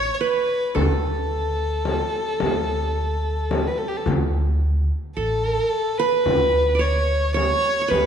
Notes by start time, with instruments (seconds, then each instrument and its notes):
Already playing: violin C#5, qanun C#5
0.14 violin C#5
0.21 qanun B4, violin B4
0.75 upright bass D2, qanun A4, violin A4, frame drum
1.85 frame drum
2.40 upright bass D2, frame drum
3.51 frame drum
3.68 violin B4
3.78 violin A4
3.88 violin G4
3.97 violin A4
4.06 upright bass D2, frame drum
5.17 upright bass A1, qanun A4, violin A4
5.98 violin B4, qanun B4
6.26 upright bass D2, frame drum
6.75 qanun D5
6.79 qanun C#5, violin C#5
7.34 qanun C#5, violin C#5, frame drum
7.81 qanun C#5
7.88 upright bass D2, qanun B4, violin B4, frame drum